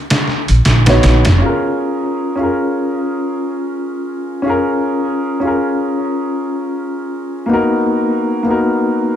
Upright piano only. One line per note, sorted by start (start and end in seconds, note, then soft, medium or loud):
0.86 1.22 B3 medium
0.86 1.22 D#4 medium
0.86 1.23 F#4 medium
0.86 1.24 C#5 medium
1.38 2.32 C#4 medium
1.38 2.33 F4 medium
1.43 2.34 G#4 medium
1.43 2.36 A#4 medium
2.36 4.40 C#4 medium
2.36 4.41 F4 medium
2.40 4.42 G#4 medium
2.40 4.43 A#4 medium
4.42 5.36 C#4 medium
4.42 5.37 F4 medium
4.47 5.38 G#4 medium
4.47 5.39 A#4 medium
5.40 7.44 C#4 medium
5.40 7.45 F4 medium
5.45 7.46 G#4 medium
5.45 7.47 A#4 medium
7.46 8.39 A#3 medium
7.46 8.40 B3 medium
7.46 8.41 D#4 medium
7.51 8.42 F#4 medium
7.51 8.43 A#4 medium
8.43 9.16 A#3 medium
8.43 9.16 B3 medium
8.43 9.16 D#4 medium
8.49 9.16 F#4 medium
8.49 9.16 A#4 medium